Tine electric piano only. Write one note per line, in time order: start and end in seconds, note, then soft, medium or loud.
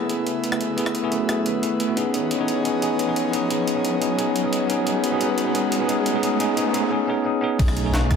0.00 0.74 A3 medium
0.00 0.75 B3 medium
0.00 0.76 E4 medium
0.00 0.77 G#4 loud
0.76 1.01 A3 medium
0.76 1.01 B3 medium
0.76 1.01 E4 medium
0.76 1.02 G#4 loud
1.02 1.26 A3 medium
1.02 1.27 B3 medium
1.02 1.27 E4 medium
1.02 1.27 G#4 loud
1.28 1.60 A3 medium
1.28 1.61 B3 medium
1.28 1.61 E4 medium
1.28 1.61 G#4 medium
1.62 1.86 A3 medium
1.62 1.86 B3 medium
1.62 1.87 E4 medium
1.62 1.87 G#4 medium
1.87 1.94 A3 medium
1.87 1.95 B3 medium
1.87 1.95 E4 medium
1.87 1.96 F#4 medium
1.96 2.11 B3 medium
1.96 2.11 C#4 medium
1.96 2.12 D#4 medium
1.96 2.12 G#4 loud
2.13 2.37 B3 medium
2.13 2.37 C#4 medium
2.13 2.38 D#4 medium
2.13 2.38 G#4 medium
2.38 2.62 B3 medium
2.38 2.63 C#4 medium
2.38 2.63 D#4 medium
2.38 2.64 G#4 loud
2.63 2.80 B3 medium
2.63 2.80 C#4 medium
2.63 2.81 D#4 medium
2.68 2.82 G#4 loud
2.81 3.05 B3 medium
2.81 3.05 C#4 medium
2.81 3.06 D#4 medium
2.81 3.06 G#4 medium
3.06 3.30 B3 medium
3.06 3.31 C#4 medium
3.06 3.31 D#4 medium
3.06 3.32 G#4 medium
3.31 3.48 B3 medium
3.31 3.49 C#4 medium
3.31 3.49 D#4 medium
3.36 3.50 G#4 loud
3.49 3.73 B3 medium
3.49 3.74 C#4 medium
3.49 3.74 D#4 medium
3.49 3.74 G#4 medium
3.75 3.98 B3 medium
3.75 3.99 C#4 medium
3.75 4.00 D#4 medium
3.75 4.00 G#4 loud
3.99 4.16 B3 medium
3.99 4.17 C#4 medium
3.99 4.18 D#4 medium
4.04 4.18 G#4 loud
4.17 4.41 B3 medium
4.17 4.42 C#4 medium
4.17 4.42 D#4 medium
4.17 4.43 G#4 medium
4.43 4.66 B3 medium
4.43 4.67 C#4 medium
4.43 4.68 D#4 medium
4.43 4.68 G#4 loud
4.67 4.84 B3 loud
4.67 4.85 C#4 medium
4.67 4.86 D#4 medium
4.72 4.86 G#4 loud
4.85 5.10 B3 medium
4.85 5.10 C#4 medium
4.85 5.10 D#4 medium
4.85 5.11 G#4 medium
5.11 5.18 B3 medium
5.11 5.19 C#4 medium
5.11 5.20 D#4 medium
5.11 5.20 G#4 loud
5.19 5.44 B3 medium
5.19 5.44 C#4 medium
5.19 5.44 D#4 medium
5.19 5.45 G#4 medium
5.45 5.52 B3 medium
5.45 5.53 C#4 medium
5.45 5.54 D#4 medium
5.45 5.54 G#4 loud
5.54 5.78 B3 medium
5.54 5.78 C#4 medium
5.54 5.79 D#4 medium
5.54 5.79 G#4 loud
5.79 5.86 B3 medium
5.79 5.87 C#4 medium
5.79 5.88 D#4 medium
5.79 5.88 G#4 loud
5.88 6.12 B3 medium
5.88 6.12 C#4 medium
5.88 6.13 D#4 medium
5.88 6.13 G#4 medium
6.13 6.21 B3 loud
6.13 6.21 C#4 medium
6.13 6.22 D#4 medium
6.13 6.22 G#4 loud
6.22 6.38 B3 medium
6.22 6.39 C#4 medium
6.22 6.39 D#4 medium
6.22 6.39 G#4 medium
6.39 6.55 B3 medium
6.39 6.56 C#4 medium
6.39 6.56 D#4 medium
6.39 6.56 G#4 loud
6.56 6.72 B3 medium
6.56 6.73 C#4 medium
6.56 6.73 D#4 medium
6.56 6.73 G#4 loud
6.73 6.89 B3 medium
6.73 6.90 C#4 medium
6.73 6.90 D#4 medium
6.73 6.91 G#4 loud
6.90 7.06 B3 medium
6.90 7.07 C#4 medium
6.90 7.07 D#4 medium
6.90 7.08 G#4 loud
7.07 7.23 B3 medium
7.07 7.24 C#4 medium
7.07 7.24 D#4 medium
7.07 7.25 G#4 loud
7.24 7.40 B3 medium
7.24 7.41 C#4 medium
7.24 7.41 D#4 medium
7.24 7.42 G#4 medium
7.41 7.58 B3 medium
7.41 7.58 C#4 medium
7.41 7.58 D#4 medium
7.41 7.59 G#4 loud
7.58 7.82 A3 medium
7.58 7.83 C#4 medium
7.84 8.07 A3 medium
7.84 8.08 C#4 medium
7.84 8.09 D#4 medium
7.84 8.09 G#4 loud
8.08 8.16 A3 medium
8.08 8.16 C#4 medium
8.08 8.16 D#4 medium
8.13 8.16 G#4 loud